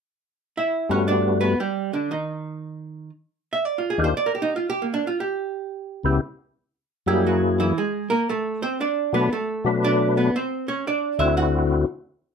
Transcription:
0.57 E4 E5
0.89 G2 G3 A3 B3 C#4 F#4 C#5
1.08 D4 D5
1.41 B3 B4
1.60 G3 G4
1.93 D3 D4
2.11 D#3 D#4
3.53 E5
3.65 D5
3.78 F4
3.90 G#4
3.98 D#2 D#3 D4 F4 G4
4.04 C5
4.17 D5
4.26 A#4
4.35 G4
4.42 D#4
4.56 F4
4.70 G4
4.82 A#3
4.94 D4
5.07 F4
5.20 G4
6.03 C#2 C#3 B3 E4 G4
7.06 F#2 F#3 G3 A#3 E4 G4 G#4
7.26 F#3 F#4
7.60 E3 E4
7.78 G#3 G#4
8.10 A#3 A#4
8.29 A3 A4
8.62 C4 C5
8.80 D4 D5
9.13 B2 F#3 A3 B3 D4 B4
9.32 A3 A4
9.64 B2 F#3 A3 D4 B4
9.84 D4 D5
10.17 B3 B4
10.36 C4 C5
10.68 C#4 C#5
10.87 D4 D5
11.19 D2 D3 C4 E4 F#4 E5
11.37 F#4 F#5

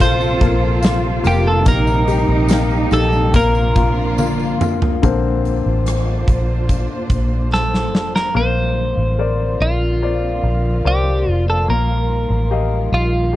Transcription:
Already playing: A#1 C3 F3 A#3 C4 F4 A4
0.00 F4 C5, kick, closed hi-hat, tambourine
0.21 tambourine
0.41 A#1 A#3, kick, closed hi-hat
0.82 F4, snare, closed hi-hat, tambourine
1.24 F1 A#3 G4, closed hi-hat, tambourine
1.48 A4
1.66 A#1 G3 A#3 D#4 G4 A#4, kick, closed hi-hat, tambourine
1.87 tambourine
2.08 G4, closed hi-hat, tambourine
2.29 A#1
2.48 A#3, snare, closed hi-hat, tambourine
2.70 tambourine
2.91 A#1 G4 A4, closed hi-hat, tambourine
3.13 tambourine
3.34 A#1 F3 A#3 D4 F4 A#4, kick, closed hi-hat, tambourine
3.55 tambourine
3.76 F4, kick, closed hi-hat
4.18 A#3, high tom, tambourine
4.39 tambourine
4.61 F1 F4, mid tom, tambourine
4.82 floor tom
5.02 A#1 D3 A#3 C4 D4 F4 C5, kick, closed hi-hat
5.45 closed hi-hat
5.66 A1
5.86 cross-stick, closed hi-hat
6.28 A#1, kick, closed hi-hat
6.69 kick, closed hi-hat
7.10 A#1, kick, closed hi-hat
7.53 A4, snare
7.74 snare
7.93 F1, snare
8.16 A#4, snare
8.35 A#1 D3 F3 A#3 C4 F4 C5
8.97 A1
9.19 A#4 C5 D5
9.60 A#1 F4
10.02 A#4 C5 D5
10.43 A#1
10.85 C2 G4 A#4 C5 D5
11.27 F1
11.31 F4
11.50 A4
11.68 A#1 D#3 G3 A#3 A#4
12.30 A1
12.51 G4 D#5 F5
12.92 A#1 F4
13.33 G4

